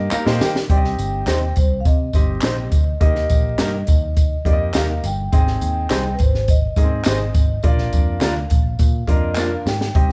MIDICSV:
0, 0, Header, 1, 7, 480
1, 0, Start_track
1, 0, Key_signature, -3, "major"
1, 0, Tempo, 578035
1, 584, Time_signature, 4, 2, 24, 8
1, 8404, End_track
2, 0, Start_track
2, 0, Title_t, "Vibraphone"
2, 0, Program_c, 0, 11
2, 107, Note_on_c, 0, 77, 104
2, 347, Note_on_c, 0, 79, 91
2, 352, Note_off_c, 0, 77, 0
2, 454, Note_off_c, 0, 79, 0
2, 582, Note_on_c, 0, 79, 109
2, 1269, Note_off_c, 0, 79, 0
2, 1312, Note_on_c, 0, 72, 84
2, 1392, Note_off_c, 0, 72, 0
2, 1498, Note_on_c, 0, 77, 65
2, 1549, Note_on_c, 0, 75, 91
2, 1550, Note_off_c, 0, 77, 0
2, 2473, Note_off_c, 0, 75, 0
2, 2513, Note_on_c, 0, 75, 99
2, 3699, Note_off_c, 0, 75, 0
2, 3709, Note_on_c, 0, 75, 81
2, 3816, Note_off_c, 0, 75, 0
2, 3956, Note_on_c, 0, 77, 96
2, 4197, Note_off_c, 0, 77, 0
2, 4199, Note_on_c, 0, 79, 84
2, 4434, Note_off_c, 0, 79, 0
2, 4444, Note_on_c, 0, 79, 108
2, 5103, Note_on_c, 0, 71, 61
2, 5115, Note_off_c, 0, 79, 0
2, 5153, Note_off_c, 0, 71, 0
2, 5168, Note_on_c, 0, 72, 78
2, 5397, Note_on_c, 0, 75, 85
2, 5403, Note_off_c, 0, 72, 0
2, 6361, Note_on_c, 0, 77, 104
2, 6380, Note_off_c, 0, 75, 0
2, 7519, Note_off_c, 0, 77, 0
2, 7560, Note_on_c, 0, 75, 83
2, 7776, Note_off_c, 0, 75, 0
2, 7796, Note_on_c, 0, 77, 89
2, 8014, Note_off_c, 0, 77, 0
2, 8031, Note_on_c, 0, 79, 83
2, 8258, Note_off_c, 0, 79, 0
2, 8268, Note_on_c, 0, 79, 98
2, 8404, Note_off_c, 0, 79, 0
2, 8404, End_track
3, 0, Start_track
3, 0, Title_t, "Grand piano"
3, 0, Program_c, 1, 0
3, 0, Note_on_c, 1, 58, 79
3, 0, Note_on_c, 1, 63, 71
3, 0, Note_on_c, 1, 67, 71
3, 0, Note_on_c, 1, 75, 88
3, 102, Note_off_c, 1, 58, 0
3, 103, Note_off_c, 1, 63, 0
3, 105, Note_off_c, 1, 67, 0
3, 106, Note_off_c, 1, 75, 0
3, 217, Note_on_c, 1, 58, 85
3, 220, Note_on_c, 1, 63, 80
3, 222, Note_on_c, 1, 67, 83
3, 225, Note_on_c, 1, 72, 97
3, 463, Note_off_c, 1, 58, 0
3, 465, Note_off_c, 1, 63, 0
3, 466, Note_off_c, 1, 67, 0
3, 467, Note_off_c, 1, 72, 0
3, 578, Note_on_c, 1, 60, 66
3, 582, Note_on_c, 1, 63, 58
3, 584, Note_on_c, 1, 67, 60
3, 591, Note_on_c, 1, 74, 61
3, 642, Note_off_c, 1, 74, 0
3, 642, Note_on_c, 1, 75, 74
3, 1228, Note_off_c, 1, 60, 0
3, 1230, Note_off_c, 1, 63, 0
3, 1231, Note_off_c, 1, 67, 0
3, 1261, Note_off_c, 1, 75, 0
3, 1779, Note_on_c, 1, 60, 59
3, 1783, Note_on_c, 1, 63, 57
3, 1784, Note_on_c, 1, 67, 57
3, 1789, Note_on_c, 1, 75, 68
3, 2267, Note_off_c, 1, 60, 0
3, 2269, Note_off_c, 1, 63, 0
3, 2270, Note_off_c, 1, 67, 0
3, 2272, Note_off_c, 1, 75, 0
3, 2495, Note_on_c, 1, 58, 65
3, 2499, Note_on_c, 1, 63, 64
3, 2499, Note_on_c, 1, 67, 60
3, 2504, Note_on_c, 1, 75, 76
3, 3148, Note_off_c, 1, 58, 0
3, 3150, Note_off_c, 1, 63, 0
3, 3150, Note_off_c, 1, 67, 0
3, 3152, Note_off_c, 1, 75, 0
3, 3698, Note_on_c, 1, 58, 64
3, 3701, Note_on_c, 1, 63, 61
3, 3705, Note_on_c, 1, 67, 57
3, 3707, Note_on_c, 1, 74, 57
3, 3760, Note_off_c, 1, 74, 0
3, 3761, Note_on_c, 1, 75, 69
3, 4188, Note_off_c, 1, 58, 0
3, 4189, Note_off_c, 1, 63, 0
3, 4191, Note_off_c, 1, 67, 0
3, 4219, Note_off_c, 1, 75, 0
3, 4419, Note_on_c, 1, 60, 70
3, 4425, Note_on_c, 1, 63, 63
3, 4426, Note_on_c, 1, 68, 65
3, 4430, Note_on_c, 1, 75, 75
3, 5071, Note_off_c, 1, 60, 0
3, 5073, Note_off_c, 1, 63, 0
3, 5074, Note_off_c, 1, 68, 0
3, 5076, Note_off_c, 1, 75, 0
3, 5621, Note_on_c, 1, 58, 52
3, 5624, Note_on_c, 1, 63, 61
3, 5626, Note_on_c, 1, 68, 64
3, 5630, Note_on_c, 1, 75, 70
3, 5674, Note_on_c, 1, 60, 67
3, 5678, Note_off_c, 1, 58, 0
3, 6111, Note_off_c, 1, 63, 0
3, 6112, Note_off_c, 1, 68, 0
3, 6114, Note_off_c, 1, 75, 0
3, 6136, Note_off_c, 1, 60, 0
3, 6340, Note_on_c, 1, 58, 74
3, 6341, Note_on_c, 1, 62, 60
3, 6344, Note_on_c, 1, 65, 66
3, 6350, Note_on_c, 1, 74, 79
3, 6990, Note_off_c, 1, 58, 0
3, 6991, Note_off_c, 1, 62, 0
3, 6993, Note_off_c, 1, 65, 0
3, 6995, Note_off_c, 1, 74, 0
3, 7536, Note_on_c, 1, 58, 64
3, 7539, Note_on_c, 1, 62, 59
3, 7542, Note_on_c, 1, 65, 61
3, 7546, Note_on_c, 1, 70, 72
3, 8026, Note_off_c, 1, 58, 0
3, 8027, Note_off_c, 1, 62, 0
3, 8029, Note_off_c, 1, 65, 0
3, 8031, Note_off_c, 1, 70, 0
3, 8258, Note_on_c, 1, 60, 66
3, 8263, Note_on_c, 1, 63, 65
3, 8267, Note_on_c, 1, 67, 61
3, 8268, Note_on_c, 1, 75, 74
3, 8404, Note_off_c, 1, 60, 0
3, 8404, Note_off_c, 1, 63, 0
3, 8404, Note_off_c, 1, 67, 0
3, 8404, Note_off_c, 1, 75, 0
3, 8404, End_track
4, 0, Start_track
4, 0, Title_t, "Clean electric guitar"
4, 0, Program_c, 2, 27
4, 95, Note_on_c, 2, 58, 90
4, 100, Note_on_c, 2, 63, 94
4, 107, Note_on_c, 2, 67, 99
4, 111, Note_on_c, 2, 70, 103
4, 190, Note_off_c, 2, 58, 0
4, 192, Note_off_c, 2, 63, 0
4, 196, Note_off_c, 2, 67, 0
4, 198, Note_off_c, 2, 70, 0
4, 1053, Note_on_c, 2, 60, 69
4, 1057, Note_on_c, 2, 63, 76
4, 1064, Note_on_c, 2, 67, 77
4, 1069, Note_on_c, 2, 72, 75
4, 1148, Note_off_c, 2, 60, 0
4, 1150, Note_off_c, 2, 63, 0
4, 1154, Note_off_c, 2, 67, 0
4, 1156, Note_off_c, 2, 72, 0
4, 2016, Note_on_c, 2, 60, 80
4, 2022, Note_on_c, 2, 63, 84
4, 2026, Note_on_c, 2, 67, 89
4, 2031, Note_on_c, 2, 72, 87
4, 2109, Note_off_c, 2, 60, 0
4, 2113, Note_off_c, 2, 63, 0
4, 2115, Note_off_c, 2, 67, 0
4, 2117, Note_off_c, 2, 72, 0
4, 2982, Note_on_c, 2, 58, 74
4, 2987, Note_on_c, 2, 63, 76
4, 2992, Note_on_c, 2, 67, 85
4, 2996, Note_on_c, 2, 70, 84
4, 3073, Note_off_c, 2, 58, 0
4, 3075, Note_off_c, 2, 63, 0
4, 3078, Note_off_c, 2, 67, 0
4, 3080, Note_off_c, 2, 70, 0
4, 3939, Note_on_c, 2, 58, 82
4, 3944, Note_on_c, 2, 63, 84
4, 3950, Note_on_c, 2, 67, 97
4, 3954, Note_on_c, 2, 70, 82
4, 4032, Note_off_c, 2, 58, 0
4, 4034, Note_off_c, 2, 63, 0
4, 4037, Note_off_c, 2, 67, 0
4, 4039, Note_off_c, 2, 70, 0
4, 4899, Note_on_c, 2, 60, 77
4, 4907, Note_on_c, 2, 63, 81
4, 4910, Note_on_c, 2, 68, 90
4, 4916, Note_on_c, 2, 72, 81
4, 4992, Note_off_c, 2, 60, 0
4, 4996, Note_off_c, 2, 63, 0
4, 4997, Note_off_c, 2, 68, 0
4, 5000, Note_off_c, 2, 72, 0
4, 5862, Note_on_c, 2, 60, 81
4, 5865, Note_on_c, 2, 63, 85
4, 5873, Note_on_c, 2, 68, 84
4, 5877, Note_on_c, 2, 72, 86
4, 5954, Note_off_c, 2, 60, 0
4, 5955, Note_off_c, 2, 63, 0
4, 5959, Note_off_c, 2, 68, 0
4, 5961, Note_off_c, 2, 72, 0
4, 6820, Note_on_c, 2, 58, 79
4, 6826, Note_on_c, 2, 62, 75
4, 6829, Note_on_c, 2, 65, 77
4, 6833, Note_on_c, 2, 70, 90
4, 6913, Note_off_c, 2, 58, 0
4, 6916, Note_off_c, 2, 62, 0
4, 6917, Note_off_c, 2, 65, 0
4, 6919, Note_off_c, 2, 70, 0
4, 7776, Note_on_c, 2, 58, 88
4, 7783, Note_on_c, 2, 62, 84
4, 7788, Note_on_c, 2, 65, 86
4, 7794, Note_on_c, 2, 70, 88
4, 7870, Note_off_c, 2, 58, 0
4, 7874, Note_off_c, 2, 62, 0
4, 7876, Note_off_c, 2, 65, 0
4, 7879, Note_off_c, 2, 70, 0
4, 8404, End_track
5, 0, Start_track
5, 0, Title_t, "Picked electric bass"
5, 0, Program_c, 3, 34
5, 219, Note_on_c, 3, 46, 86
5, 319, Note_off_c, 3, 46, 0
5, 336, Note_on_c, 3, 51, 104
5, 534, Note_off_c, 3, 51, 0
5, 578, Note_on_c, 3, 36, 103
5, 775, Note_off_c, 3, 36, 0
5, 813, Note_on_c, 3, 31, 82
5, 1012, Note_off_c, 3, 31, 0
5, 1049, Note_on_c, 3, 39, 91
5, 1250, Note_off_c, 3, 39, 0
5, 1305, Note_on_c, 3, 36, 82
5, 1499, Note_off_c, 3, 36, 0
5, 1541, Note_on_c, 3, 48, 93
5, 1737, Note_off_c, 3, 48, 0
5, 1772, Note_on_c, 3, 31, 77
5, 1971, Note_off_c, 3, 31, 0
5, 2016, Note_on_c, 3, 34, 78
5, 2256, Note_off_c, 3, 34, 0
5, 2256, Note_on_c, 3, 38, 90
5, 2454, Note_off_c, 3, 38, 0
5, 2499, Note_on_c, 3, 39, 94
5, 2696, Note_off_c, 3, 39, 0
5, 2744, Note_on_c, 3, 34, 82
5, 2939, Note_off_c, 3, 34, 0
5, 2976, Note_on_c, 3, 43, 75
5, 3174, Note_off_c, 3, 43, 0
5, 3227, Note_on_c, 3, 39, 83
5, 3616, Note_off_c, 3, 39, 0
5, 3696, Note_on_c, 3, 41, 84
5, 3894, Note_off_c, 3, 41, 0
5, 3941, Note_on_c, 3, 39, 85
5, 4138, Note_off_c, 3, 39, 0
5, 4183, Note_on_c, 3, 31, 89
5, 4378, Note_off_c, 3, 31, 0
5, 4424, Note_on_c, 3, 32, 86
5, 4619, Note_off_c, 3, 32, 0
5, 4665, Note_on_c, 3, 39, 82
5, 4860, Note_off_c, 3, 39, 0
5, 4906, Note_on_c, 3, 36, 87
5, 5101, Note_off_c, 3, 36, 0
5, 5147, Note_on_c, 3, 32, 89
5, 5536, Note_off_c, 3, 32, 0
5, 5619, Note_on_c, 3, 44, 79
5, 5816, Note_off_c, 3, 44, 0
5, 5868, Note_on_c, 3, 32, 85
5, 6062, Note_off_c, 3, 32, 0
5, 6100, Note_on_c, 3, 32, 89
5, 6297, Note_off_c, 3, 32, 0
5, 6340, Note_on_c, 3, 34, 92
5, 6537, Note_off_c, 3, 34, 0
5, 6584, Note_on_c, 3, 41, 91
5, 6780, Note_off_c, 3, 41, 0
5, 6817, Note_on_c, 3, 38, 90
5, 7015, Note_off_c, 3, 38, 0
5, 7065, Note_on_c, 3, 34, 85
5, 7260, Note_off_c, 3, 34, 0
5, 7303, Note_on_c, 3, 46, 104
5, 7499, Note_off_c, 3, 46, 0
5, 7535, Note_on_c, 3, 41, 81
5, 7928, Note_off_c, 3, 41, 0
5, 8020, Note_on_c, 3, 44, 87
5, 8216, Note_off_c, 3, 44, 0
5, 8260, Note_on_c, 3, 36, 95
5, 8404, Note_off_c, 3, 36, 0
5, 8404, End_track
6, 0, Start_track
6, 0, Title_t, "Muted picked electric bass strokes"
6, 101, Note_on_c, 9, 29, 42
6, 184, Note_off_c, 9, 29, 0
6, 8404, End_track
7, 0, Start_track
7, 0, Title_t, "Drums"
7, 94, Note_on_c, 9, 39, 101
7, 94, Note_on_c, 9, 54, 101
7, 177, Note_off_c, 9, 39, 0
7, 177, Note_off_c, 9, 54, 0
7, 222, Note_on_c, 9, 38, 83
7, 305, Note_off_c, 9, 38, 0
7, 342, Note_on_c, 9, 38, 102
7, 343, Note_on_c, 9, 54, 62
7, 425, Note_off_c, 9, 38, 0
7, 426, Note_off_c, 9, 54, 0
7, 463, Note_on_c, 9, 38, 90
7, 546, Note_off_c, 9, 38, 0
7, 578, Note_on_c, 9, 36, 106
7, 578, Note_on_c, 9, 42, 75
7, 661, Note_off_c, 9, 36, 0
7, 661, Note_off_c, 9, 42, 0
7, 700, Note_on_c, 9, 38, 29
7, 783, Note_off_c, 9, 38, 0
7, 818, Note_on_c, 9, 54, 52
7, 821, Note_on_c, 9, 42, 58
7, 901, Note_off_c, 9, 54, 0
7, 904, Note_off_c, 9, 42, 0
7, 1055, Note_on_c, 9, 39, 81
7, 1055, Note_on_c, 9, 54, 81
7, 1060, Note_on_c, 9, 38, 97
7, 1060, Note_on_c, 9, 42, 82
7, 1138, Note_off_c, 9, 39, 0
7, 1138, Note_off_c, 9, 54, 0
7, 1143, Note_off_c, 9, 38, 0
7, 1143, Note_off_c, 9, 42, 0
7, 1293, Note_on_c, 9, 42, 71
7, 1303, Note_on_c, 9, 36, 88
7, 1303, Note_on_c, 9, 54, 50
7, 1376, Note_off_c, 9, 42, 0
7, 1386, Note_off_c, 9, 36, 0
7, 1386, Note_off_c, 9, 54, 0
7, 1538, Note_on_c, 9, 42, 68
7, 1539, Note_on_c, 9, 36, 95
7, 1539, Note_on_c, 9, 54, 54
7, 1621, Note_off_c, 9, 42, 0
7, 1622, Note_off_c, 9, 36, 0
7, 1622, Note_off_c, 9, 54, 0
7, 1771, Note_on_c, 9, 54, 36
7, 1773, Note_on_c, 9, 36, 82
7, 1782, Note_on_c, 9, 42, 78
7, 1854, Note_off_c, 9, 54, 0
7, 1856, Note_off_c, 9, 36, 0
7, 1865, Note_off_c, 9, 42, 0
7, 2004, Note_on_c, 9, 39, 90
7, 2004, Note_on_c, 9, 54, 92
7, 2014, Note_on_c, 9, 42, 89
7, 2020, Note_on_c, 9, 38, 97
7, 2087, Note_off_c, 9, 39, 0
7, 2087, Note_off_c, 9, 54, 0
7, 2097, Note_off_c, 9, 42, 0
7, 2103, Note_off_c, 9, 38, 0
7, 2254, Note_on_c, 9, 42, 68
7, 2257, Note_on_c, 9, 36, 88
7, 2258, Note_on_c, 9, 54, 53
7, 2337, Note_off_c, 9, 42, 0
7, 2340, Note_off_c, 9, 36, 0
7, 2341, Note_off_c, 9, 54, 0
7, 2497, Note_on_c, 9, 42, 81
7, 2499, Note_on_c, 9, 36, 106
7, 2580, Note_off_c, 9, 42, 0
7, 2582, Note_off_c, 9, 36, 0
7, 2617, Note_on_c, 9, 38, 30
7, 2700, Note_off_c, 9, 38, 0
7, 2735, Note_on_c, 9, 42, 60
7, 2737, Note_on_c, 9, 54, 51
7, 2743, Note_on_c, 9, 36, 77
7, 2818, Note_off_c, 9, 42, 0
7, 2820, Note_off_c, 9, 54, 0
7, 2826, Note_off_c, 9, 36, 0
7, 2976, Note_on_c, 9, 38, 98
7, 2976, Note_on_c, 9, 42, 82
7, 2981, Note_on_c, 9, 39, 79
7, 2981, Note_on_c, 9, 54, 78
7, 3059, Note_off_c, 9, 38, 0
7, 3059, Note_off_c, 9, 42, 0
7, 3064, Note_off_c, 9, 39, 0
7, 3064, Note_off_c, 9, 54, 0
7, 3212, Note_on_c, 9, 42, 65
7, 3224, Note_on_c, 9, 36, 89
7, 3228, Note_on_c, 9, 54, 52
7, 3295, Note_off_c, 9, 42, 0
7, 3307, Note_off_c, 9, 36, 0
7, 3311, Note_off_c, 9, 54, 0
7, 3458, Note_on_c, 9, 42, 74
7, 3461, Note_on_c, 9, 36, 85
7, 3462, Note_on_c, 9, 54, 55
7, 3541, Note_off_c, 9, 42, 0
7, 3544, Note_off_c, 9, 36, 0
7, 3545, Note_off_c, 9, 54, 0
7, 3696, Note_on_c, 9, 36, 79
7, 3703, Note_on_c, 9, 42, 78
7, 3779, Note_off_c, 9, 36, 0
7, 3786, Note_off_c, 9, 42, 0
7, 3935, Note_on_c, 9, 39, 96
7, 3935, Note_on_c, 9, 54, 96
7, 3938, Note_on_c, 9, 42, 89
7, 3944, Note_on_c, 9, 38, 105
7, 4018, Note_off_c, 9, 39, 0
7, 4018, Note_off_c, 9, 54, 0
7, 4021, Note_off_c, 9, 42, 0
7, 4027, Note_off_c, 9, 38, 0
7, 4181, Note_on_c, 9, 42, 74
7, 4184, Note_on_c, 9, 54, 54
7, 4264, Note_off_c, 9, 42, 0
7, 4267, Note_off_c, 9, 54, 0
7, 4421, Note_on_c, 9, 54, 30
7, 4423, Note_on_c, 9, 42, 77
7, 4424, Note_on_c, 9, 36, 108
7, 4504, Note_off_c, 9, 54, 0
7, 4506, Note_off_c, 9, 42, 0
7, 4507, Note_off_c, 9, 36, 0
7, 4543, Note_on_c, 9, 38, 32
7, 4626, Note_off_c, 9, 38, 0
7, 4661, Note_on_c, 9, 54, 54
7, 4665, Note_on_c, 9, 42, 59
7, 4744, Note_off_c, 9, 54, 0
7, 4748, Note_off_c, 9, 42, 0
7, 4900, Note_on_c, 9, 39, 76
7, 4900, Note_on_c, 9, 54, 77
7, 4903, Note_on_c, 9, 38, 103
7, 4903, Note_on_c, 9, 42, 83
7, 4983, Note_off_c, 9, 39, 0
7, 4983, Note_off_c, 9, 54, 0
7, 4986, Note_off_c, 9, 38, 0
7, 4986, Note_off_c, 9, 42, 0
7, 5135, Note_on_c, 9, 42, 72
7, 5146, Note_on_c, 9, 54, 53
7, 5147, Note_on_c, 9, 36, 82
7, 5218, Note_off_c, 9, 42, 0
7, 5229, Note_off_c, 9, 54, 0
7, 5230, Note_off_c, 9, 36, 0
7, 5268, Note_on_c, 9, 38, 31
7, 5351, Note_off_c, 9, 38, 0
7, 5379, Note_on_c, 9, 54, 56
7, 5380, Note_on_c, 9, 42, 71
7, 5384, Note_on_c, 9, 36, 91
7, 5462, Note_off_c, 9, 54, 0
7, 5463, Note_off_c, 9, 42, 0
7, 5467, Note_off_c, 9, 36, 0
7, 5615, Note_on_c, 9, 54, 34
7, 5617, Note_on_c, 9, 36, 79
7, 5624, Note_on_c, 9, 42, 81
7, 5698, Note_off_c, 9, 54, 0
7, 5701, Note_off_c, 9, 36, 0
7, 5707, Note_off_c, 9, 42, 0
7, 5851, Note_on_c, 9, 39, 91
7, 5851, Note_on_c, 9, 54, 96
7, 5858, Note_on_c, 9, 42, 84
7, 5864, Note_on_c, 9, 38, 105
7, 5934, Note_off_c, 9, 39, 0
7, 5934, Note_off_c, 9, 54, 0
7, 5941, Note_off_c, 9, 42, 0
7, 5947, Note_off_c, 9, 38, 0
7, 6098, Note_on_c, 9, 54, 58
7, 6100, Note_on_c, 9, 42, 71
7, 6101, Note_on_c, 9, 36, 93
7, 6181, Note_off_c, 9, 54, 0
7, 6183, Note_off_c, 9, 42, 0
7, 6184, Note_off_c, 9, 36, 0
7, 6333, Note_on_c, 9, 54, 30
7, 6341, Note_on_c, 9, 42, 79
7, 6342, Note_on_c, 9, 36, 111
7, 6416, Note_off_c, 9, 54, 0
7, 6424, Note_off_c, 9, 42, 0
7, 6425, Note_off_c, 9, 36, 0
7, 6462, Note_on_c, 9, 38, 30
7, 6545, Note_off_c, 9, 38, 0
7, 6581, Note_on_c, 9, 42, 61
7, 6581, Note_on_c, 9, 54, 54
7, 6586, Note_on_c, 9, 36, 78
7, 6664, Note_off_c, 9, 42, 0
7, 6664, Note_off_c, 9, 54, 0
7, 6669, Note_off_c, 9, 36, 0
7, 6818, Note_on_c, 9, 39, 75
7, 6818, Note_on_c, 9, 54, 82
7, 6820, Note_on_c, 9, 42, 76
7, 6821, Note_on_c, 9, 38, 102
7, 6901, Note_off_c, 9, 39, 0
7, 6901, Note_off_c, 9, 54, 0
7, 6903, Note_off_c, 9, 42, 0
7, 6904, Note_off_c, 9, 38, 0
7, 7056, Note_on_c, 9, 42, 66
7, 7063, Note_on_c, 9, 54, 54
7, 7066, Note_on_c, 9, 36, 87
7, 7140, Note_off_c, 9, 42, 0
7, 7146, Note_off_c, 9, 54, 0
7, 7149, Note_off_c, 9, 36, 0
7, 7298, Note_on_c, 9, 54, 53
7, 7303, Note_on_c, 9, 36, 92
7, 7303, Note_on_c, 9, 42, 72
7, 7381, Note_off_c, 9, 54, 0
7, 7386, Note_off_c, 9, 36, 0
7, 7386, Note_off_c, 9, 42, 0
7, 7535, Note_on_c, 9, 54, 33
7, 7536, Note_on_c, 9, 36, 80
7, 7543, Note_on_c, 9, 42, 83
7, 7618, Note_off_c, 9, 54, 0
7, 7619, Note_off_c, 9, 36, 0
7, 7626, Note_off_c, 9, 42, 0
7, 7768, Note_on_c, 9, 39, 92
7, 7768, Note_on_c, 9, 54, 86
7, 7786, Note_on_c, 9, 38, 52
7, 7852, Note_off_c, 9, 39, 0
7, 7852, Note_off_c, 9, 54, 0
7, 7870, Note_off_c, 9, 38, 0
7, 8026, Note_on_c, 9, 54, 55
7, 8027, Note_on_c, 9, 38, 90
7, 8109, Note_off_c, 9, 54, 0
7, 8110, Note_off_c, 9, 38, 0
7, 8146, Note_on_c, 9, 38, 80
7, 8229, Note_off_c, 9, 38, 0
7, 8262, Note_on_c, 9, 36, 106
7, 8264, Note_on_c, 9, 42, 84
7, 8345, Note_off_c, 9, 36, 0
7, 8347, Note_off_c, 9, 42, 0
7, 8404, End_track
0, 0, End_of_file